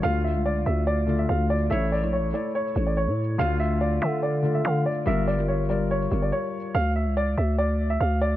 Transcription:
<<
  \new Staff \with { instrumentName = "Grand piano" } { \time 4/4 \key d \minor \tempo 4 = 143 f''8 e''8 d''8 e''8 d''8. e''16 f''8 d''8 | e''8 d''8 cis''8 d''8 cis''8. d''16 cis''4 | f''8 e''8 d''8 e''8 d''8. e''16 f''8 d''8 | e''8 d''8 cis''8 d''8 cis''8. d''16 cis''4 |
f''8 e''8 d''8 e''8 d''8. e''16 f''8 d''8 | }
  \new Staff \with { instrumentName = "Felt piano" } { \time 4/4 \key d \minor <d a f'>4. r4 <d a f'>4 r8 | <a e' cis''>8 r16 <a e' cis''>8 r16 <a e' cis''>8. r16 <a e' cis''>4 r8 | <d a f'>4. r4 <d a f'>4 r8 | <g f' bes'>8 r16 <g f' bes'>8 r16 <g f' bes'>8. r16 <g f' bes'>4 r8 |
r1 | }
  \new Staff \with { instrumentName = "808-style bass" } { \clef bass \time 4/4 \key d \minor d,8. cis,8. d,4. d,4 | a,,8. bes,,16. a,,16. r4 a,,8. a,8. | d,4. d4. d8 r8 | g,,2~ g,,8 g,,8 r4 |
d,8. cis,8. d,4. d,4 | }
>>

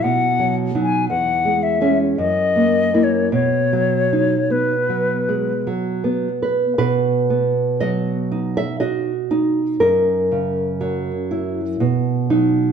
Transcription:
<<
  \new Staff \with { instrumentName = "Flute" } { \time 3/4 \key b \major \tempo 4 = 58 fis''8. gis''16 fis''8 e''16 r16 dis''8. cis''16 | cis''4 b'4 r4 | r2. | r2. | }
  \new Staff \with { instrumentName = "Nylon-string guitar" } { \time 3/4 \key b \major << { r2. | r2. | b'4 dis''8. e''16 dis''4 | ais'2~ ais'8 r8 | } \\ { \tuplet 3/2 { b,8 fis8 <fis dis'>8 e,8 gis8 <gis cis'>8 fis,8 ais8 <ais e'>8 } | \tuplet 3/2 { b,8 fis8 dis'8 b8 fis8 gis8 fis8 b8 b'8 } | b,8 b8 fis8 dis'8 fis'8 dis'8 | fis,8 cis8 fis8 e'8 b,8 <fis dis'>8 | } >> }
>>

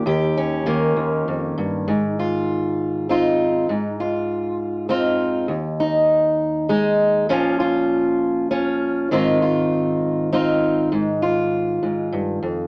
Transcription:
\new Staff \with { instrumentName = "Steel-string acoustic guitar" } { \time 6/8 \key aes \major \tempo 4. = 66 << { g'8 des'8 bes2 | r8 f'4. <c' ees' f'>4 | r8 f'4. <c' ees' f'>4 | r8 ees'4. <aes ees'>4 |
<f des' f'>8 f'4. <des' f'>4 | <ees c' ees' f'>8 f'4. <c' ees' f'>4 | r8 f'2~ f'8 | } \\ { <ees, ees>4 ees8 ees,8 f,8 g,8 | aes,2. | aes,2. | ees,2. |
bes,2. | aes,2. | aes,4. aes,8 g,8 f,8 | } >> }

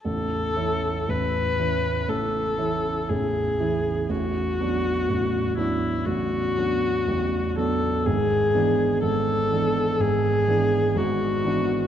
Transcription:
<<
  \new Staff \with { instrumentName = "Viola" } { \time 4/4 \key a \major \tempo 4 = 61 a'4 b'4 a'4 gis'4 | fis'4. e'8 fis'4. a'8 | gis'4 a'4 gis'4 fis'4 | }
  \new Staff \with { instrumentName = "Grand piano" } { \clef bass \time 4/4 \key a \major <a,,, a,,>8 <e cis' e'>8 <a,,, a,,>8 <e cis' e'>8 <a,,, a,,>8 <e cis' e'>8 <a,,, a,,>8 <e cis' e'>8 | <a,,, a,,>8 <fis b d'>8 <a,,, a,,>8 <fis b d'>8 <a,,, a,,>8 <fis b d'>8 <a,,, a,,>8 <fis b d'>8 | <gis,, gis,>8 <e b d'>8 <gis,, gis,>8 <e b d'>8 <gis,, gis,>8 <e b d'>8 <gis,, gis,>8 <e b d'>8 | }
>>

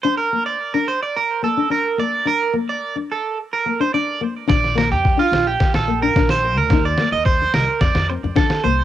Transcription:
<<
  \new Staff \with { instrumentName = "Clean electric guitar" } { \time 4/4 \key bes \major \tempo 4 = 108 c''16 bes'8 d''8 bes'16 c''16 d''16 bes'8 a'8 bes'8 d''8 | bes'8 r16 d''8 r16 a'8 r16 bes'8 c''16 d''8 r8 | d''8 bes'16 g'8 f'8 g'8 a'8 bes'8 c''8 bes'16~ | bes'16 d''8 ees''16 c''8 bes'8 d''8 r8 a'8 c''8 | }
  \new Staff \with { instrumentName = "Nylon-string guitar" } { \time 4/4 \key bes \major d'8 bes8 r16 d'8 r8. bes16 d'16 d'8 bes8 | d'8 bes8 r16 d'8 r8. bes16 d'16 d'8 bes8 | d'8 bes8 r16 d'8 r8. bes16 d'16 d'8 r8 | ees'8 bes8 r4. c'16 r16 d'8 bes8 | }
  \new Staff \with { instrumentName = "Upright bass" } { \clef bass \time 4/4 \key bes \major r1 | r1 | bes,,8. f,8 r16 bes,,8 r16 bes,,8. bes,,8. d,16 | ees,8 r16 ees,8. c,16 r16 f,16 f,8 f,8 r16 c,8 | }
  \new DrumStaff \with { instrumentName = "Drums" } \drummode { \time 4/4 r4 r4 r4 r4 | r4 r4 r4 r4 | <bd sn>16 sn16 sn8 <bd sn>8 sn8 <bd sn>16 sn8. <bd sn>16 sn8. | <bd sn>8 sn8 <bd sn>8 sn8 <bd sn>16 sn8. <bd sn>16 sn8. | }
>>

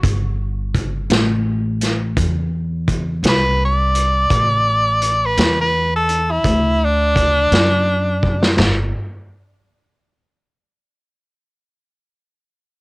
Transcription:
<<
  \new Staff \with { instrumentName = "Tenor saxophone" } { \time 12/8 \key d \mixolydian \tempo 4. = 56 r1 r8 b'8 d''4~ | d''4~ d''16 b'8 b'8 a'8 e'8. d'2~ d'8 | r1. | }
  \new Staff \with { instrumentName = "Upright bass" } { \clef bass \time 12/8 \key d \mixolydian g,,4. a,,4. e,4. c,4. | a,,4. e,4. d,4. fis,4. | g,,8 r1 r4. | }
  \new DrumStaff \with { instrumentName = "Drums" } \drummode { \time 12/8 <hh bd>4 <hh bd>8 <hh sn>4 <hh sn>8 <hh bd>4 <hh bd>8 <hh sn>4 hh8 | <hh bd>4 hh8 <hh sn>4 hh8 <hh bd>4 <hh bd>8 <hh sn>4 bd16 sn16 | <cymc sn tomfh>4. r4. r4. r4. | }
>>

